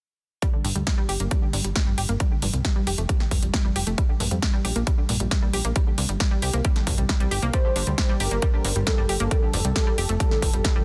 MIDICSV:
0, 0, Header, 1, 5, 480
1, 0, Start_track
1, 0, Key_signature, -2, "minor"
1, 0, Tempo, 444444
1, 460, Time_signature, 4, 2, 24, 8
1, 11713, End_track
2, 0, Start_track
2, 0, Title_t, "Soft synth lead"
2, 0, Program_c, 0, 80
2, 8140, Note_on_c, 0, 72, 103
2, 8764, Note_off_c, 0, 72, 0
2, 8858, Note_on_c, 0, 70, 91
2, 9483, Note_off_c, 0, 70, 0
2, 9578, Note_on_c, 0, 69, 104
2, 11713, Note_off_c, 0, 69, 0
2, 11713, End_track
3, 0, Start_track
3, 0, Title_t, "Synth pluck"
3, 0, Program_c, 1, 84
3, 457, Note_on_c, 1, 55, 104
3, 513, Note_off_c, 1, 55, 0
3, 577, Note_on_c, 1, 50, 75
3, 633, Note_off_c, 1, 50, 0
3, 694, Note_on_c, 1, 43, 102
3, 752, Note_off_c, 1, 43, 0
3, 816, Note_on_c, 1, 55, 75
3, 873, Note_off_c, 1, 55, 0
3, 937, Note_on_c, 1, 55, 99
3, 1020, Note_off_c, 1, 55, 0
3, 1055, Note_on_c, 1, 55, 100
3, 1112, Note_off_c, 1, 55, 0
3, 1174, Note_on_c, 1, 67, 97
3, 1232, Note_off_c, 1, 67, 0
3, 1297, Note_on_c, 1, 58, 94
3, 1353, Note_off_c, 1, 58, 0
3, 1415, Note_on_c, 1, 55, 101
3, 1472, Note_off_c, 1, 55, 0
3, 1535, Note_on_c, 1, 50, 75
3, 1592, Note_off_c, 1, 50, 0
3, 1655, Note_on_c, 1, 43, 102
3, 1712, Note_off_c, 1, 43, 0
3, 1776, Note_on_c, 1, 55, 76
3, 1832, Note_off_c, 1, 55, 0
3, 1895, Note_on_c, 1, 55, 95
3, 1979, Note_off_c, 1, 55, 0
3, 2016, Note_on_c, 1, 55, 98
3, 2072, Note_off_c, 1, 55, 0
3, 2136, Note_on_c, 1, 67, 99
3, 2193, Note_off_c, 1, 67, 0
3, 2257, Note_on_c, 1, 58, 101
3, 2313, Note_off_c, 1, 58, 0
3, 2377, Note_on_c, 1, 55, 106
3, 2433, Note_off_c, 1, 55, 0
3, 2498, Note_on_c, 1, 50, 75
3, 2554, Note_off_c, 1, 50, 0
3, 2617, Note_on_c, 1, 43, 103
3, 2673, Note_off_c, 1, 43, 0
3, 2738, Note_on_c, 1, 55, 75
3, 2794, Note_off_c, 1, 55, 0
3, 2857, Note_on_c, 1, 55, 97
3, 2941, Note_off_c, 1, 55, 0
3, 2977, Note_on_c, 1, 55, 101
3, 3033, Note_off_c, 1, 55, 0
3, 3100, Note_on_c, 1, 67, 99
3, 3154, Note_off_c, 1, 67, 0
3, 3219, Note_on_c, 1, 57, 97
3, 3274, Note_off_c, 1, 57, 0
3, 3339, Note_on_c, 1, 55, 97
3, 3394, Note_off_c, 1, 55, 0
3, 3459, Note_on_c, 1, 50, 74
3, 3514, Note_off_c, 1, 50, 0
3, 3580, Note_on_c, 1, 43, 105
3, 3635, Note_off_c, 1, 43, 0
3, 3699, Note_on_c, 1, 55, 76
3, 3754, Note_off_c, 1, 55, 0
3, 3819, Note_on_c, 1, 55, 98
3, 3901, Note_off_c, 1, 55, 0
3, 3938, Note_on_c, 1, 55, 100
3, 3994, Note_off_c, 1, 55, 0
3, 4058, Note_on_c, 1, 67, 96
3, 4114, Note_off_c, 1, 67, 0
3, 4177, Note_on_c, 1, 57, 100
3, 4233, Note_off_c, 1, 57, 0
3, 4297, Note_on_c, 1, 55, 103
3, 4353, Note_off_c, 1, 55, 0
3, 4418, Note_on_c, 1, 50, 74
3, 4474, Note_off_c, 1, 50, 0
3, 4538, Note_on_c, 1, 43, 100
3, 4593, Note_off_c, 1, 43, 0
3, 4657, Note_on_c, 1, 55, 73
3, 4713, Note_off_c, 1, 55, 0
3, 4777, Note_on_c, 1, 55, 99
3, 4861, Note_off_c, 1, 55, 0
3, 4896, Note_on_c, 1, 55, 101
3, 4952, Note_off_c, 1, 55, 0
3, 5018, Note_on_c, 1, 67, 98
3, 5074, Note_off_c, 1, 67, 0
3, 5138, Note_on_c, 1, 58, 94
3, 5193, Note_off_c, 1, 58, 0
3, 5257, Note_on_c, 1, 55, 103
3, 5313, Note_off_c, 1, 55, 0
3, 5378, Note_on_c, 1, 50, 78
3, 5433, Note_off_c, 1, 50, 0
3, 5498, Note_on_c, 1, 43, 101
3, 5554, Note_off_c, 1, 43, 0
3, 5618, Note_on_c, 1, 55, 78
3, 5673, Note_off_c, 1, 55, 0
3, 5737, Note_on_c, 1, 55, 100
3, 5820, Note_off_c, 1, 55, 0
3, 5859, Note_on_c, 1, 55, 97
3, 5914, Note_off_c, 1, 55, 0
3, 5978, Note_on_c, 1, 67, 99
3, 6033, Note_off_c, 1, 67, 0
3, 6098, Note_on_c, 1, 58, 100
3, 6154, Note_off_c, 1, 58, 0
3, 6219, Note_on_c, 1, 55, 102
3, 6274, Note_off_c, 1, 55, 0
3, 6340, Note_on_c, 1, 50, 74
3, 6394, Note_off_c, 1, 50, 0
3, 6458, Note_on_c, 1, 43, 100
3, 6514, Note_off_c, 1, 43, 0
3, 6578, Note_on_c, 1, 55, 76
3, 6634, Note_off_c, 1, 55, 0
3, 6697, Note_on_c, 1, 55, 102
3, 6780, Note_off_c, 1, 55, 0
3, 6817, Note_on_c, 1, 55, 99
3, 6873, Note_off_c, 1, 55, 0
3, 6938, Note_on_c, 1, 67, 95
3, 6994, Note_off_c, 1, 67, 0
3, 7058, Note_on_c, 1, 58, 95
3, 7113, Note_off_c, 1, 58, 0
3, 7178, Note_on_c, 1, 55, 105
3, 7233, Note_off_c, 1, 55, 0
3, 7298, Note_on_c, 1, 50, 76
3, 7354, Note_off_c, 1, 50, 0
3, 7419, Note_on_c, 1, 43, 98
3, 7474, Note_off_c, 1, 43, 0
3, 7538, Note_on_c, 1, 55, 75
3, 7593, Note_off_c, 1, 55, 0
3, 7657, Note_on_c, 1, 55, 98
3, 7740, Note_off_c, 1, 55, 0
3, 7778, Note_on_c, 1, 55, 99
3, 7833, Note_off_c, 1, 55, 0
3, 7897, Note_on_c, 1, 67, 99
3, 7953, Note_off_c, 1, 67, 0
3, 8019, Note_on_c, 1, 58, 105
3, 8074, Note_off_c, 1, 58, 0
3, 8139, Note_on_c, 1, 55, 102
3, 8194, Note_off_c, 1, 55, 0
3, 8260, Note_on_c, 1, 50, 73
3, 8314, Note_off_c, 1, 50, 0
3, 8379, Note_on_c, 1, 43, 102
3, 8434, Note_off_c, 1, 43, 0
3, 8499, Note_on_c, 1, 55, 77
3, 8554, Note_off_c, 1, 55, 0
3, 8619, Note_on_c, 1, 55, 96
3, 8701, Note_off_c, 1, 55, 0
3, 8740, Note_on_c, 1, 55, 100
3, 8795, Note_off_c, 1, 55, 0
3, 8859, Note_on_c, 1, 67, 96
3, 8914, Note_off_c, 1, 67, 0
3, 8978, Note_on_c, 1, 58, 97
3, 9034, Note_off_c, 1, 58, 0
3, 9099, Note_on_c, 1, 55, 102
3, 9154, Note_off_c, 1, 55, 0
3, 9219, Note_on_c, 1, 50, 77
3, 9274, Note_off_c, 1, 50, 0
3, 9340, Note_on_c, 1, 43, 98
3, 9394, Note_off_c, 1, 43, 0
3, 9459, Note_on_c, 1, 55, 78
3, 9514, Note_off_c, 1, 55, 0
3, 9579, Note_on_c, 1, 55, 101
3, 9661, Note_off_c, 1, 55, 0
3, 9699, Note_on_c, 1, 55, 103
3, 9754, Note_off_c, 1, 55, 0
3, 9819, Note_on_c, 1, 67, 96
3, 9874, Note_off_c, 1, 67, 0
3, 9938, Note_on_c, 1, 58, 104
3, 9994, Note_off_c, 1, 58, 0
3, 10059, Note_on_c, 1, 55, 101
3, 10114, Note_off_c, 1, 55, 0
3, 10178, Note_on_c, 1, 50, 75
3, 10234, Note_off_c, 1, 50, 0
3, 10298, Note_on_c, 1, 43, 103
3, 10354, Note_off_c, 1, 43, 0
3, 10419, Note_on_c, 1, 55, 75
3, 10474, Note_off_c, 1, 55, 0
3, 10540, Note_on_c, 1, 55, 99
3, 10622, Note_off_c, 1, 55, 0
3, 10659, Note_on_c, 1, 55, 102
3, 10714, Note_off_c, 1, 55, 0
3, 10779, Note_on_c, 1, 67, 98
3, 10834, Note_off_c, 1, 67, 0
3, 10899, Note_on_c, 1, 57, 99
3, 10954, Note_off_c, 1, 57, 0
3, 11017, Note_on_c, 1, 55, 101
3, 11073, Note_off_c, 1, 55, 0
3, 11136, Note_on_c, 1, 50, 77
3, 11193, Note_off_c, 1, 50, 0
3, 11256, Note_on_c, 1, 43, 105
3, 11312, Note_off_c, 1, 43, 0
3, 11377, Note_on_c, 1, 55, 79
3, 11433, Note_off_c, 1, 55, 0
3, 11495, Note_on_c, 1, 55, 102
3, 11579, Note_off_c, 1, 55, 0
3, 11616, Note_on_c, 1, 55, 99
3, 11673, Note_off_c, 1, 55, 0
3, 11713, End_track
4, 0, Start_track
4, 0, Title_t, "Analog synth bass"
4, 0, Program_c, 2, 38
4, 699, Note_on_c, 2, 31, 94
4, 785, Note_off_c, 2, 31, 0
4, 819, Note_on_c, 2, 38, 80
4, 905, Note_off_c, 2, 38, 0
4, 1178, Note_on_c, 2, 31, 90
4, 1265, Note_off_c, 2, 31, 0
4, 1297, Note_on_c, 2, 31, 80
4, 1385, Note_off_c, 2, 31, 0
4, 1657, Note_on_c, 2, 31, 94
4, 1744, Note_off_c, 2, 31, 0
4, 1778, Note_on_c, 2, 31, 78
4, 1865, Note_off_c, 2, 31, 0
4, 2020, Note_on_c, 2, 31, 77
4, 2106, Note_off_c, 2, 31, 0
4, 2138, Note_on_c, 2, 31, 90
4, 2225, Note_off_c, 2, 31, 0
4, 2259, Note_on_c, 2, 31, 81
4, 2345, Note_off_c, 2, 31, 0
4, 2617, Note_on_c, 2, 29, 92
4, 2705, Note_off_c, 2, 29, 0
4, 2737, Note_on_c, 2, 36, 80
4, 2825, Note_off_c, 2, 36, 0
4, 3096, Note_on_c, 2, 29, 89
4, 3184, Note_off_c, 2, 29, 0
4, 3217, Note_on_c, 2, 29, 82
4, 3304, Note_off_c, 2, 29, 0
4, 3578, Note_on_c, 2, 29, 93
4, 3665, Note_off_c, 2, 29, 0
4, 3698, Note_on_c, 2, 29, 82
4, 3785, Note_off_c, 2, 29, 0
4, 3938, Note_on_c, 2, 29, 77
4, 4025, Note_off_c, 2, 29, 0
4, 4056, Note_on_c, 2, 29, 91
4, 4144, Note_off_c, 2, 29, 0
4, 4177, Note_on_c, 2, 29, 81
4, 4264, Note_off_c, 2, 29, 0
4, 4538, Note_on_c, 2, 34, 94
4, 4625, Note_off_c, 2, 34, 0
4, 4658, Note_on_c, 2, 41, 78
4, 4745, Note_off_c, 2, 41, 0
4, 5018, Note_on_c, 2, 34, 94
4, 5105, Note_off_c, 2, 34, 0
4, 5139, Note_on_c, 2, 34, 79
4, 5225, Note_off_c, 2, 34, 0
4, 5500, Note_on_c, 2, 34, 93
4, 5586, Note_off_c, 2, 34, 0
4, 5619, Note_on_c, 2, 34, 80
4, 5705, Note_off_c, 2, 34, 0
4, 5857, Note_on_c, 2, 34, 76
4, 5945, Note_off_c, 2, 34, 0
4, 5977, Note_on_c, 2, 34, 86
4, 6064, Note_off_c, 2, 34, 0
4, 6096, Note_on_c, 2, 34, 80
4, 6184, Note_off_c, 2, 34, 0
4, 6457, Note_on_c, 2, 36, 96
4, 6544, Note_off_c, 2, 36, 0
4, 6578, Note_on_c, 2, 31, 78
4, 6665, Note_off_c, 2, 31, 0
4, 6939, Note_on_c, 2, 36, 94
4, 7025, Note_off_c, 2, 36, 0
4, 7060, Note_on_c, 2, 36, 84
4, 7146, Note_off_c, 2, 36, 0
4, 7419, Note_on_c, 2, 36, 93
4, 7505, Note_off_c, 2, 36, 0
4, 7539, Note_on_c, 2, 36, 81
4, 7626, Note_off_c, 2, 36, 0
4, 7780, Note_on_c, 2, 36, 77
4, 7866, Note_off_c, 2, 36, 0
4, 7900, Note_on_c, 2, 31, 88
4, 7986, Note_off_c, 2, 31, 0
4, 8021, Note_on_c, 2, 36, 80
4, 8106, Note_off_c, 2, 36, 0
4, 8382, Note_on_c, 2, 31, 91
4, 8467, Note_off_c, 2, 31, 0
4, 8501, Note_on_c, 2, 38, 78
4, 8587, Note_off_c, 2, 38, 0
4, 8860, Note_on_c, 2, 31, 92
4, 8946, Note_off_c, 2, 31, 0
4, 8979, Note_on_c, 2, 31, 81
4, 9065, Note_off_c, 2, 31, 0
4, 9338, Note_on_c, 2, 31, 93
4, 9425, Note_off_c, 2, 31, 0
4, 9459, Note_on_c, 2, 31, 82
4, 9545, Note_off_c, 2, 31, 0
4, 9700, Note_on_c, 2, 31, 78
4, 9786, Note_off_c, 2, 31, 0
4, 9819, Note_on_c, 2, 31, 89
4, 9905, Note_off_c, 2, 31, 0
4, 9940, Note_on_c, 2, 31, 77
4, 10026, Note_off_c, 2, 31, 0
4, 10299, Note_on_c, 2, 29, 94
4, 10386, Note_off_c, 2, 29, 0
4, 10418, Note_on_c, 2, 36, 83
4, 10505, Note_off_c, 2, 36, 0
4, 10778, Note_on_c, 2, 29, 90
4, 10865, Note_off_c, 2, 29, 0
4, 10900, Note_on_c, 2, 29, 80
4, 10986, Note_off_c, 2, 29, 0
4, 11258, Note_on_c, 2, 29, 94
4, 11345, Note_off_c, 2, 29, 0
4, 11380, Note_on_c, 2, 29, 81
4, 11466, Note_off_c, 2, 29, 0
4, 11620, Note_on_c, 2, 29, 77
4, 11706, Note_off_c, 2, 29, 0
4, 11713, End_track
5, 0, Start_track
5, 0, Title_t, "Drums"
5, 458, Note_on_c, 9, 36, 111
5, 458, Note_on_c, 9, 42, 77
5, 566, Note_off_c, 9, 36, 0
5, 566, Note_off_c, 9, 42, 0
5, 698, Note_on_c, 9, 46, 98
5, 806, Note_off_c, 9, 46, 0
5, 818, Note_on_c, 9, 42, 50
5, 926, Note_off_c, 9, 42, 0
5, 938, Note_on_c, 9, 36, 114
5, 938, Note_on_c, 9, 38, 114
5, 938, Note_on_c, 9, 42, 79
5, 1046, Note_off_c, 9, 36, 0
5, 1046, Note_off_c, 9, 38, 0
5, 1046, Note_off_c, 9, 42, 0
5, 1178, Note_on_c, 9, 46, 98
5, 1286, Note_off_c, 9, 46, 0
5, 1296, Note_on_c, 9, 42, 51
5, 1404, Note_off_c, 9, 42, 0
5, 1417, Note_on_c, 9, 42, 80
5, 1418, Note_on_c, 9, 36, 109
5, 1525, Note_off_c, 9, 42, 0
5, 1526, Note_off_c, 9, 36, 0
5, 1656, Note_on_c, 9, 46, 99
5, 1764, Note_off_c, 9, 46, 0
5, 1777, Note_on_c, 9, 42, 54
5, 1885, Note_off_c, 9, 42, 0
5, 1896, Note_on_c, 9, 38, 117
5, 1896, Note_on_c, 9, 42, 76
5, 1898, Note_on_c, 9, 36, 112
5, 2004, Note_off_c, 9, 38, 0
5, 2004, Note_off_c, 9, 42, 0
5, 2006, Note_off_c, 9, 36, 0
5, 2136, Note_on_c, 9, 46, 96
5, 2244, Note_off_c, 9, 46, 0
5, 2256, Note_on_c, 9, 42, 50
5, 2364, Note_off_c, 9, 42, 0
5, 2377, Note_on_c, 9, 42, 72
5, 2378, Note_on_c, 9, 36, 117
5, 2485, Note_off_c, 9, 42, 0
5, 2486, Note_off_c, 9, 36, 0
5, 2616, Note_on_c, 9, 46, 99
5, 2724, Note_off_c, 9, 46, 0
5, 2738, Note_on_c, 9, 42, 53
5, 2846, Note_off_c, 9, 42, 0
5, 2858, Note_on_c, 9, 36, 115
5, 2858, Note_on_c, 9, 38, 120
5, 2858, Note_on_c, 9, 42, 76
5, 2966, Note_off_c, 9, 36, 0
5, 2966, Note_off_c, 9, 38, 0
5, 2966, Note_off_c, 9, 42, 0
5, 3099, Note_on_c, 9, 46, 105
5, 3207, Note_off_c, 9, 46, 0
5, 3220, Note_on_c, 9, 42, 50
5, 3328, Note_off_c, 9, 42, 0
5, 3338, Note_on_c, 9, 36, 112
5, 3339, Note_on_c, 9, 42, 77
5, 3446, Note_off_c, 9, 36, 0
5, 3447, Note_off_c, 9, 42, 0
5, 3459, Note_on_c, 9, 38, 38
5, 3567, Note_off_c, 9, 38, 0
5, 3578, Note_on_c, 9, 36, 61
5, 3578, Note_on_c, 9, 46, 105
5, 3686, Note_off_c, 9, 36, 0
5, 3686, Note_off_c, 9, 46, 0
5, 3699, Note_on_c, 9, 42, 54
5, 3807, Note_off_c, 9, 42, 0
5, 3819, Note_on_c, 9, 36, 118
5, 3820, Note_on_c, 9, 38, 119
5, 3820, Note_on_c, 9, 42, 78
5, 3927, Note_off_c, 9, 36, 0
5, 3928, Note_off_c, 9, 38, 0
5, 3928, Note_off_c, 9, 42, 0
5, 4059, Note_on_c, 9, 46, 104
5, 4167, Note_off_c, 9, 46, 0
5, 4179, Note_on_c, 9, 42, 51
5, 4287, Note_off_c, 9, 42, 0
5, 4299, Note_on_c, 9, 36, 125
5, 4300, Note_on_c, 9, 42, 75
5, 4407, Note_off_c, 9, 36, 0
5, 4408, Note_off_c, 9, 42, 0
5, 4538, Note_on_c, 9, 46, 106
5, 4646, Note_off_c, 9, 46, 0
5, 4659, Note_on_c, 9, 42, 49
5, 4767, Note_off_c, 9, 42, 0
5, 4779, Note_on_c, 9, 36, 116
5, 4779, Note_on_c, 9, 38, 117
5, 4779, Note_on_c, 9, 42, 75
5, 4887, Note_off_c, 9, 36, 0
5, 4887, Note_off_c, 9, 38, 0
5, 4887, Note_off_c, 9, 42, 0
5, 5019, Note_on_c, 9, 46, 102
5, 5127, Note_off_c, 9, 46, 0
5, 5139, Note_on_c, 9, 42, 51
5, 5247, Note_off_c, 9, 42, 0
5, 5259, Note_on_c, 9, 36, 114
5, 5259, Note_on_c, 9, 42, 74
5, 5367, Note_off_c, 9, 36, 0
5, 5367, Note_off_c, 9, 42, 0
5, 5497, Note_on_c, 9, 46, 108
5, 5605, Note_off_c, 9, 46, 0
5, 5618, Note_on_c, 9, 42, 51
5, 5726, Note_off_c, 9, 42, 0
5, 5738, Note_on_c, 9, 38, 115
5, 5738, Note_on_c, 9, 42, 72
5, 5739, Note_on_c, 9, 36, 124
5, 5846, Note_off_c, 9, 38, 0
5, 5846, Note_off_c, 9, 42, 0
5, 5847, Note_off_c, 9, 36, 0
5, 5978, Note_on_c, 9, 46, 107
5, 6086, Note_off_c, 9, 46, 0
5, 6099, Note_on_c, 9, 42, 48
5, 6207, Note_off_c, 9, 42, 0
5, 6217, Note_on_c, 9, 42, 74
5, 6219, Note_on_c, 9, 36, 118
5, 6325, Note_off_c, 9, 42, 0
5, 6327, Note_off_c, 9, 36, 0
5, 6457, Note_on_c, 9, 46, 102
5, 6565, Note_off_c, 9, 46, 0
5, 6577, Note_on_c, 9, 42, 49
5, 6685, Note_off_c, 9, 42, 0
5, 6698, Note_on_c, 9, 38, 114
5, 6698, Note_on_c, 9, 42, 71
5, 6699, Note_on_c, 9, 36, 121
5, 6806, Note_off_c, 9, 38, 0
5, 6806, Note_off_c, 9, 42, 0
5, 6807, Note_off_c, 9, 36, 0
5, 6936, Note_on_c, 9, 46, 107
5, 7044, Note_off_c, 9, 46, 0
5, 7058, Note_on_c, 9, 42, 50
5, 7166, Note_off_c, 9, 42, 0
5, 7177, Note_on_c, 9, 42, 76
5, 7179, Note_on_c, 9, 36, 113
5, 7285, Note_off_c, 9, 42, 0
5, 7287, Note_off_c, 9, 36, 0
5, 7299, Note_on_c, 9, 38, 36
5, 7299, Note_on_c, 9, 42, 36
5, 7407, Note_off_c, 9, 38, 0
5, 7407, Note_off_c, 9, 42, 0
5, 7419, Note_on_c, 9, 36, 64
5, 7419, Note_on_c, 9, 46, 106
5, 7527, Note_off_c, 9, 36, 0
5, 7527, Note_off_c, 9, 46, 0
5, 7540, Note_on_c, 9, 42, 50
5, 7648, Note_off_c, 9, 42, 0
5, 7659, Note_on_c, 9, 36, 118
5, 7659, Note_on_c, 9, 38, 114
5, 7659, Note_on_c, 9, 42, 72
5, 7767, Note_off_c, 9, 36, 0
5, 7767, Note_off_c, 9, 38, 0
5, 7767, Note_off_c, 9, 42, 0
5, 7781, Note_on_c, 9, 42, 36
5, 7889, Note_off_c, 9, 42, 0
5, 7899, Note_on_c, 9, 46, 102
5, 8007, Note_off_c, 9, 46, 0
5, 8019, Note_on_c, 9, 42, 46
5, 8127, Note_off_c, 9, 42, 0
5, 8137, Note_on_c, 9, 42, 72
5, 8139, Note_on_c, 9, 36, 118
5, 8245, Note_off_c, 9, 42, 0
5, 8247, Note_off_c, 9, 36, 0
5, 8378, Note_on_c, 9, 46, 103
5, 8486, Note_off_c, 9, 46, 0
5, 8499, Note_on_c, 9, 42, 50
5, 8607, Note_off_c, 9, 42, 0
5, 8618, Note_on_c, 9, 36, 109
5, 8618, Note_on_c, 9, 38, 113
5, 8618, Note_on_c, 9, 42, 74
5, 8726, Note_off_c, 9, 36, 0
5, 8726, Note_off_c, 9, 38, 0
5, 8726, Note_off_c, 9, 42, 0
5, 8857, Note_on_c, 9, 46, 102
5, 8965, Note_off_c, 9, 46, 0
5, 8977, Note_on_c, 9, 42, 49
5, 9085, Note_off_c, 9, 42, 0
5, 9097, Note_on_c, 9, 42, 73
5, 9098, Note_on_c, 9, 36, 114
5, 9205, Note_off_c, 9, 42, 0
5, 9206, Note_off_c, 9, 36, 0
5, 9337, Note_on_c, 9, 46, 107
5, 9445, Note_off_c, 9, 46, 0
5, 9458, Note_on_c, 9, 42, 50
5, 9566, Note_off_c, 9, 42, 0
5, 9577, Note_on_c, 9, 38, 109
5, 9577, Note_on_c, 9, 42, 74
5, 9578, Note_on_c, 9, 36, 112
5, 9685, Note_off_c, 9, 38, 0
5, 9685, Note_off_c, 9, 42, 0
5, 9686, Note_off_c, 9, 36, 0
5, 9818, Note_on_c, 9, 46, 100
5, 9926, Note_off_c, 9, 46, 0
5, 9938, Note_on_c, 9, 42, 46
5, 10046, Note_off_c, 9, 42, 0
5, 10058, Note_on_c, 9, 36, 117
5, 10058, Note_on_c, 9, 42, 76
5, 10166, Note_off_c, 9, 36, 0
5, 10166, Note_off_c, 9, 42, 0
5, 10298, Note_on_c, 9, 46, 96
5, 10406, Note_off_c, 9, 46, 0
5, 10419, Note_on_c, 9, 42, 50
5, 10527, Note_off_c, 9, 42, 0
5, 10538, Note_on_c, 9, 36, 111
5, 10539, Note_on_c, 9, 38, 111
5, 10539, Note_on_c, 9, 42, 75
5, 10646, Note_off_c, 9, 36, 0
5, 10647, Note_off_c, 9, 38, 0
5, 10647, Note_off_c, 9, 42, 0
5, 10779, Note_on_c, 9, 46, 103
5, 10887, Note_off_c, 9, 46, 0
5, 10899, Note_on_c, 9, 42, 49
5, 11007, Note_off_c, 9, 42, 0
5, 11018, Note_on_c, 9, 36, 112
5, 11018, Note_on_c, 9, 42, 78
5, 11126, Note_off_c, 9, 36, 0
5, 11126, Note_off_c, 9, 42, 0
5, 11139, Note_on_c, 9, 38, 34
5, 11247, Note_off_c, 9, 38, 0
5, 11258, Note_on_c, 9, 36, 62
5, 11259, Note_on_c, 9, 46, 102
5, 11366, Note_off_c, 9, 36, 0
5, 11367, Note_off_c, 9, 46, 0
5, 11378, Note_on_c, 9, 42, 53
5, 11486, Note_off_c, 9, 42, 0
5, 11498, Note_on_c, 9, 36, 113
5, 11498, Note_on_c, 9, 38, 109
5, 11498, Note_on_c, 9, 42, 79
5, 11606, Note_off_c, 9, 36, 0
5, 11606, Note_off_c, 9, 38, 0
5, 11606, Note_off_c, 9, 42, 0
5, 11713, End_track
0, 0, End_of_file